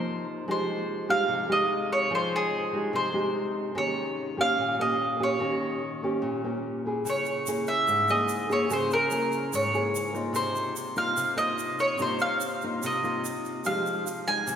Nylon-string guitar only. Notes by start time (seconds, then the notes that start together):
Already playing: C3 F3 A#3 D#4
0.48 F3 G#3 D#4 G4
1.09 G#3 D#4 G4
1.28 C3
1.48 G#3 D#4 G4
2.11 F3 G#3 D#4
2.73 G#3 D#4 G4
2.93 C3
3.13 G#3 D#4 G4
3.75 D#3 A#3 C#4 G4
4.37 A#3 C#4 G4
4.58 A#2
4.79 A#3 C#4 G4
5.19 A#3 C#4 G4
5.40 D#3 A#3 C#4 G4
6.02 A#3 C#4 G4
6.22 A#2
6.44 A#3 C#4 G4
6.86 A#3 E4 G#4
7.05 C#3
7.48 A#3 E4 G#4
7.88 G#2
8.09 A#3 E4 G#4
8.49 A#3 E4 G#4
8.70 C#3 A#3 E4 G#4
9.11 A#3 E4 G#4
9.53 G#2
9.73 A#3 E4 G#4
10.13 A#3 D#4 F4
10.33 C3
10.96 A#3 D#4 F4
11.17 C3
11.36 A#3 D#4 F4
11.99 C3 A#3 D#4 F4
12.63 A#3 D#4 F4
12.84 C3
13.03 A#3 D#4 F4
13.65 F3 G#3 D#4 G4
14.28 G#3 D#4
14.47 C3